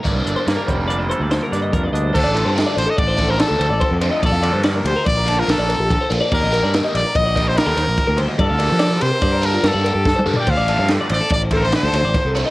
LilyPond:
<<
  \new Staff \with { instrumentName = "Clean electric guitar" } { \time 5/4 \key g \minor \tempo 4 = 144 d''16 c''16 d''16 c''16 d''16 bes'16 c''16 bes'16 d''16 ees''16 c''16 d''16 c''16 bes'16 d''16 ees''16 bes'16 d''16 ees''16 c''16 | c''16 d''16 a'16 c''16 a'16 d''16 c''16 a'16 d''16 c''16 a'16 c''16 d''16 a'16 c''16 d''16 c''16 a'16 c''16 ees''16 | d''16 f''16 d''16 c''16 d''16 bes'16 g'16 bes'16 d''16 bes'16 a'16 f'16 bes'16 d''16 bes'16 g'16 a'16 c''16 a'16 d''16 | d''16 ees''16 bes'16 d''16 bes'16 ees''16 d''16 bes'16 ees''16 d''16 bes'16 c''16 d''16 a'16 c''16 d''16 c''16 bes'16 c''16 ees''16 |
d''16 f''16 d''16 c''16 d''16 bes'16 g'16 bes'16 d''16 bes'16 a'16 f'16 bes'16 d''16 bes'16 g'16 a'16 c''16 a'16 d''16 | c''16 d''16 a'16 c''16 a'16 d''16 c''16 a'16 d''16 c''16 a'16 c''16 d''16 a'16 c''16 d''16 c''16 a'16 c''16 ees''16 | }
  \new Staff \with { instrumentName = "Trumpet" } { \time 5/4 \key g \minor r1 r4 | a'4 \tuplet 3/2 { r8. c''8 ees''16 } d''8. bes'16 a'4. r8 | a'4 r8 c''8 d''8. bes'16 a'4. r8 | bes'4 r8 d''8 ees''8. c''16 bes'4. r8 |
a'4. c''4 bes'8 a'4~ \tuplet 3/2 { a'8. r8 g''16 } | f''4 r8 d''8 d''8 c''32 bes'32 c''16 c''4. r8 | }
  \new Staff \with { instrumentName = "Clean electric guitar" } { \time 5/4 \key g \minor << { bes8 d'8 bes4 d'8 a'4 d'4 d'8~ | d'1~ d'4 | r1 r4 | r1 r4 |
r1 r4 | r1 r4 | } \\ { g,4. g4. d4 g,4 | r1 r4 | r1 r4 | r1 r4 |
r1 r4 | r1 r4 | } >> }
  \new Staff \with { instrumentName = "Overdriven electric guitar" } { \clef bass \time 5/4 \key g \minor <g, d g bes d'>1~ <g, d g bes d'>4 | r8 <d f a d'>8 <d f a d'>8 r4 <d f a d'>8 <d f a d'>8 r4 <d f a d'>8 | r8 <d f bes d'>8 <d f bes d'>8 r4 <d f bes d'>8 <d f bes d'>8 r4 <d f bes d'>8 | r8 <ees g bes ees'>8 <ees g bes ees'>8 r4 <ees g bes ees'>8 <ees g bes ees'>8 r4 <ees g bes ees'>8 |
r8 <d g bes d'>8 <d g bes d'>8 r4 <d g bes d'>8 <d g bes d'>8 r4 <d g bes d'>8 | r8 <d f a d'>8 <d f a d'>8 r4 <d f a d'>8 <d f a d'>8 r4 <d f a d'>8 | }
  \new Staff \with { instrumentName = "Fingered electric bass" } { \clef bass \time 5/4 \key g \minor g,,16 c,16 g,,16 r16 g,16 r16 f,,4~ f,,16 d,8 r16 g,8 f,8 d,8 | d,16 a,,8 g,8 r16 a,,16 r16 a,,4~ a,,16 d,16 d,16 a,,16 r16 f,8 r16 | bes,,16 f,8 g,8. d,16 r16 bes,,4 bes,,16 bes,,8 bes,,8 r16 bes,,16 r16 | ees,16 bes,,8 g,8 r16 bes,,16 r16 bes,,4~ bes,,16 ees,16 ees,16 bes,,16 r16 d,8 r16 |
g,16 d,8 f8. c16 r16 g,4 g,16 g,8 g,8 r16 g,16 r16 | d,16 a,,8 g,8 r16 a,,16 r16 a,,4~ a,,16 d,16 d,16 a,,16 r16 c,8 r16 | }
  \new DrumStaff \with { instrumentName = "Drums" } \drummode { \time 5/4 <hh bd>8 hh8 <hh sn>8 <hh bd>8 hh8 hh8 <hh sn>8 <hh sn>8 <hh bd>8 hh8 | <cymc bd>8 cymr8 <cymr sn>8 cymr8 <bd cymr>8 <bd cymr>8 <cymr sn>8 cymr8 <bd cymr>8 cymr8 | <bd cymr>8 cymr8 <cymr sn>8 cymr8 <bd cymr>8 <cymr sn>8 <cymr sn>8 cymr8 <bd cymr>8 cymr8 | <cymc bd>8 cymr8 <cymr sn>8 cymr8 <bd cymr>8 <bd cymr sn>8 <cymr sn>8 <cymr sn>8 <bd cymr>8 cymr8 |
<bd cymr>8 <cymr sn>8 <cymr sn>8 cymr8 <bd cymr>8 cymr8 <cymr sn>8 cymr8 \tuplet 3/2 { <bd sn>8 toml8 tomfh8 } | <cymc bd cymr>8 cymr8 <cymr sn>8 cymr8 <bd cymr sn>8 <bd cymr>8 <cymr sn>8 <cymr sn>8 <bd cymr sn>8 cymr8 | }
>>